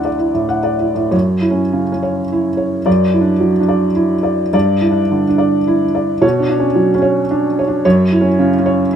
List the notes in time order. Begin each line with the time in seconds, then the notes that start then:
Already playing: D2 D4 E4 D5 F#5
0.05 D5
0.19 E4
0.34 A2
0.49 F#5
0.63 D5
0.80 E4
0.95 A2
1.11 F#2 C#5
1.41 E4
1.51 C#4
1.73 C#3
1.92 C#4
2.03 C#5
2.32 E4
2.57 C#5
2.86 F#2 D5
3.13 E4
3.21 D4
3.40 F#3
3.60 D4
3.68 D5
3.95 E4
4.23 D5
4.53 G2 D5
4.81 E4
4.91 D4
5.11 D3
5.28 D4
5.38 D5
5.67 E4
5.95 D5
6.21 B2 C#5
6.39 D4
6.49 D4
6.59 C#4
6.75 F#3
6.95 C#4
7.02 C#5
7.31 D4
7.59 C#5
7.67 D4
7.85 F#2 C#5
8.12 E4
8.21 C#4
8.39 C#3
8.59 C#4
8.66 C#5